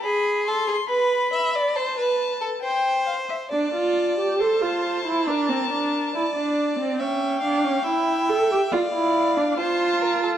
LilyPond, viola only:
\new Staff \with { instrumentName = "Viola" } { \time 4/4 \key d \minor \tempo 4 = 69 r1 | d'16 f'8 g'16 a'16 f'8 e'16 d'16 c'16 d'8 e'16 d'8 c'16 | cis'8 d'16 cis'16 e'8 a'16 g'16 f'16 e'8 d'16 f'4 | }